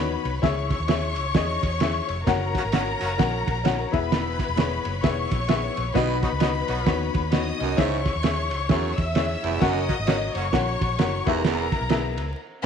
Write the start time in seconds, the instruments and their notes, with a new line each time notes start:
Already playing: fingered electric bass D#2, upright piano B3 D#4 F#4 B4 C#5, string section B4 B5
0.25 fingered electric bass C2, ride
0.42 fingered electric bass C#2, upright piano C#3 C#4 E4 G#4 C#5 E5, string section C#5 C#6, kick, snare, ride
0.70 kick, snare, ride
0.80 fingered electric bass D#2
0.88 upright piano C#4 E4 G#4 C#5 E5, snare, ride
1.16 fingered electric bass C#2, ride
1.34 fingered electric bass E2, upright piano C#4 E4 G#4 C#5 D#5, kick, snare, ride
1.63 fingered electric bass E2, kick, ride
1.80 upright piano C#4 E4 G#4 C#5 E5, snare, ride
2.08 fingered electric bass F1, ride
2.26 fingered electric bass F#1, upright piano C#4 F#4 A#4 C#5 F#5, string section A#4 A#5, kick, snare, ride
2.55 horn section F#3 A#3 C#4 F#4, kick, snare, ride
2.64 fingered electric bass G#1
2.72 horn section F#3 A#3 C#4 F#4, upright piano C#4 F#4 A#4 C#5 F#5, snare, ride
3.01 fingered electric bass F#1, horn section F#3 A#3 C#4 F#4, ride
3.17 fingered electric bass A#1, upright piano C#4 F#4 A#4 C#5 F#5, kick, snare, ride
3.48 fingered electric bass A#1, kick, ride
3.64 upright piano C#4 F#4 A#4 C#5 F#5, snare, ride
3.92 fingered electric bass E1, upright piano E3 B3 E4 G#4 B4 E5, string section B4 B5, kick, ride
4.12 snare, ride
4.39 kick, snare, ride
4.49 fingered electric bass E1
4.56 upright piano B3 E4 G#4 B4 C#5, snare, ride
4.85 fingered electric bass F#1, ride
5.02 fingered electric bass E1, upright piano B3 E4 G#4 B4 E5, string section C#5 C#6, kick, snare, ride
5.31 fingered electric bass A#1, kick, ride
5.48 upright piano B3 E4 G#4 B4 E5, snare, ride
5.77 fingered electric bass A#1, ride
5.94 fingered electric bass B1, upright piano B2 B3 D#4 F#4 B4 D#5, baritone saxophone B2, string section B4 B5, kick, snare, ride
6.23 horn section F#3 B3 D#4 F#4, kick, snare, ride
6.32 fingered electric bass C#2
6.40 horn section F#3 B3 D#4 F#4, upright piano B3 D#4 F#4 B4 D#5, snare, ride
6.68 fingered electric bass B1, horn section F#3 B3 D#4 F#4, ride
6.85 fingered electric bass D#2, upright piano B3 D#4 F#4 B4 C#5, kick, snare, ride
7.14 fingered electric bass D#2, kick, ride
7.31 upright piano B3 D#4 F#4 B4 C#5, string section D#5 D#6, snare, ride
7.60 fingered electric bass C2, baritone saxophone F#2, ride
7.77 fingered electric bass C#2, baritone saxophone G#2, upright piano C#3 C#4 E4 G#4 C#5 E5, string section C#5 C#6, kick, snare, ride
8.05 kick, snare, ride
8.16 fingered electric bass D#2
8.23 upright piano C#4 E4 G#4 C#5 E5, snare, ride
8.51 fingered electric bass C#2, ride
8.69 fingered electric bass E2, baritone saxophone F#2, upright piano C#4 E4 G#4 C#5 E5, kick, snare, ride
8.97 fingered electric bass E2, string section E5 E6, kick, ride
9.15 upright piano C#4 E4 G#4 C#5 E5, snare, ride
9.44 fingered electric bass F1, baritone saxophone E2, ride
9.60 fingered electric bass F#1, baritone saxophone F#2, upright piano C#4 F#4 A#4 C#5 F#5, string section D#5 D#6, kick, snare, ride
9.88 horn section F#3 A#3 C#4 F#4, kick, ride
9.99 fingered electric bass G#1
10.07 horn section F#3 A#3 C#4 F#4, upright piano C#4 F#4 A#4 C#5 D#5, snare, ride
10.34 fingered electric bass F#1, horn section F#3 A#3 C#4 F#4, string section C#5 C#6, ride
10.52 fingered electric bass A#1, upright piano C#4 F#4 A#4 C#5 F#5, kick, snare, ride
10.81 fingered electric bass A#1, kick, ride
10.98 fingered electric bass F#1, upright piano C#4 F#4 A#4 C#5 F#5, snare, ride
11.26 fingered electric bass E1, baritone saxophone D#2, upright piano E3 B3 E4 G#4 B4 E5, string section A#4 A#5, kick, ride
11.44 baritone saxophone E2, snare, ride
11.72 kick, snare, ride
11.81 fingered electric bass B1
11.89 upright piano B3 E4 G#4 B4 E5, snare, ride
12.18 fingered electric bass C#2, ride